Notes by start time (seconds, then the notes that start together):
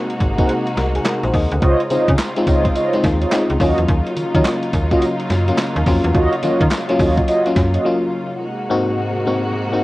Already playing: C3 G#3 A#3 C4 D#4 F#4
0.10 closed hi-hat
0.20 G#1, kick, closed hi-hat
0.38 A#3 C4 D#4 F#4 G#4 A#4 C5 F#5, kick, closed hi-hat
0.49 closed hi-hat
0.67 closed hi-hat
0.77 C2 A#4, snare, closed hi-hat
0.95 G#4, closed hi-hat
1.05 A#4, snare, clap, closed hi-hat
1.23 A#1 C5, closed hi-hat
1.34 D#2 D#5, kick, open hi-hat
1.52 D2 F#5, closed hi-hat
1.62 C#2 C#3 G#3 C4 D#4 F4 C5 C#5 D#5, kick, closed hi-hat
1.80 closed hi-hat
1.90 C#3 G#3 C4 D#4 F4 C5 C#5 D#5, closed hi-hat, tambourine
2.08 C#3, kick, closed hi-hat
2.19 snare, clap, closed hi-hat, tambourine
2.36 G#3 C4 D#4 F4, closed hi-hat
2.46 C#2 F4 C5 C#5 D#5, kick, closed hi-hat, tambourine
2.65 kick, closed hi-hat
2.75 F4 C5 C#5 D#5, closed hi-hat, tambourine
2.93 G#3 C4 D#4 F4, closed hi-hat
3.04 D#2, kick, snare, closed hi-hat, tambourine
3.21 F4 C5 C#5 D#5, closed hi-hat
3.32 G#3 C4 D#4 F4, snare, clap, closed hi-hat, tambourine
3.50 C#2, closed hi-hat
3.60 D#2 F#3 A#3 C#4 F4 F#4 C#5 D#5, kick, open hi-hat, tambourine
3.78 E2, closed hi-hat
3.88 D#2, kick, closed hi-hat
4.07 closed hi-hat
4.17 D#3, closed hi-hat, tambourine
4.34 D#3 F#3 A#3 C#4 F4 F#4 C#5 D#5, kick, closed hi-hat
4.45 snare, clap, closed hi-hat, tambourine
4.63 closed hi-hat
4.73 D#2, kick, closed hi-hat, tambourine
4.91 F#3 A#3 C#4 F4 F#4 C#5 D#5, kick, closed hi-hat
5.02 closed hi-hat, tambourine
5.20 closed hi-hat
5.30 F#2, snare, closed hi-hat, tambourine
5.48 F#3 A#3 C#4 F4, closed hi-hat
5.58 snare, clap, closed hi-hat, tambourine
5.76 D#2, closed hi-hat
5.86 F2 F#3 A#3 C#4 F4, kick, open hi-hat, tambourine
6.04 E2, closed hi-hat
6.14 D#2 F4 F#4 C#5 D#5, kick, closed hi-hat
6.33 closed hi-hat
6.43 D#3 F#3 A#3 C#4 F4 F#4 C#5 D#5, closed hi-hat, tambourine
6.61 D#3, kick, closed hi-hat
6.71 snare, clap, closed hi-hat, tambourine
6.89 F#3 A#3 C#4 F4, closed hi-hat
6.99 D#2 F4 F#4 C#5 D#5, kick, open hi-hat, tambourine
7.17 kick, closed hi-hat
7.28 F4 F#4 C#5 D#5, closed hi-hat, tambourine
7.46 F#3 A#3 C#4 F4, closed hi-hat
7.56 F#2, kick, snare, closed hi-hat, tambourine
7.74 F4 F#4 C#5 D#5, closed hi-hat
7.85 F#3 A#3 C#4 F4
8.41 C3 G#3 A#3 D#4 F#4
8.70 G#2 A#3 C4 D#4 F#4
9.26 G#2 A#3 C4 D#4 F#4
9.72 G#2 A#3 C4 D#4 F#4